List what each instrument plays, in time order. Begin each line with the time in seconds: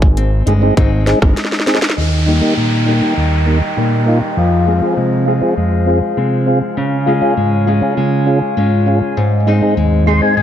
Already playing: analog synth bass G#1, nylon-string guitar G#3
0.02 kick
0.17 nylon-string guitar C4, closed hi-hat
0.46 analog synth bass G1, nylon-string guitar G#3, tonewheel organ D#4 G#4, closed hi-hat
0.61 tonewheel organ C4 D#4 G#4
0.77 analog synth bass G#1, nylon-string guitar G#3 C4 D#4, kick, closed hi-hat
1.06 tonewheel organ C4 D#4 G#4, snare, closed hi-hat
1.22 analog synth bass G1, kick, cross-stick
1.37 snare, closed hi-hat
1.45 snare
1.52 snare
1.60 snare
1.66 tonewheel organ C4 D#4 G#4, snare, closed hi-hat
1.75 snare
1.82 snare
1.90 snare
1.97 tonewheel organ D#2, nylon-string guitar D#3, glass harmonica D#4 D#5 G5 A#5, downlifter
2.26 nylon-string guitar G3 A#3 D#4, tonewheel organ D#4 G4
2.41 tonewheel organ A#3 D#4 G4
2.57 tonewheel organ A#2, nylon-string guitar G3
2.86 nylon-string guitar G3 A#3 D#4, tonewheel organ D#4 G4
3.01 tonewheel organ A#3 D#4 G4
3.17 tonewheel organ D#2, nylon-string guitar G3
3.46 tonewheel organ A#3 D#4 G4
3.77 tonewheel organ A#2, nylon-string guitar G3 A#3 D#4
4.06 tonewheel organ A#3 D#4 F4
4.37 tonewheel organ F2, nylon-string guitar F3, glass harmonica G#4 C5 F5
4.66 nylon-string guitar G#3 C4 F4, tonewheel organ F4 G#4
4.81 tonewheel organ C4 F4 G#4
4.97 tonewheel organ C3, nylon-string guitar G#3
5.26 nylon-string guitar G#3 C4 F4, tonewheel organ F4 G#4
5.41 tonewheel organ C4 F4 G#4
5.57 tonewheel organ F2, nylon-string guitar G#3
5.86 tonewheel organ C4 F4 G#4
6.17 tonewheel organ C3, nylon-string guitar G#3 C4 F4
6.46 tonewheel organ C4 F4 G#4
6.77 nylon-string guitar C#3, tonewheel organ C#3, glass harmonica C#4 C#5 G#5
7.06 nylon-string guitar G#3 C#4 F4, tonewheel organ F4 G#4
7.21 tonewheel organ C#4 F4 G#4
7.37 tonewheel organ G#2, nylon-string guitar G#3
7.66 nylon-string guitar G#3 C#4 F4, tonewheel organ F4 G#4
7.81 tonewheel organ C#4 F4 G#4
7.97 tonewheel organ C#3, nylon-string guitar G#3
8.26 tonewheel organ C#4 F4 G#4
8.57 tonewheel organ G#2, nylon-string guitar G#3 C#4 F4
8.86 tonewheel organ C#4 F4 G#4
9.17 tonewheel organ G#2, nylon-string guitar G#2, glass harmonica G#3 G#4 C5 D#5
9.46 nylon-string guitar G#3 C4 D#4, tonewheel organ D#4 G#4
9.61 tonewheel organ C4 D#4 G#4
9.77 tonewheel organ D#2, nylon-string guitar G#3
10.06 nylon-string guitar G#3 C4 D#4, tonewheel organ D#4 G#4 C6
10.21 tonewheel organ C4 D#4 G#4 G#5
10.37 tonewheel organ G#2 G#5, nylon-string guitar D#3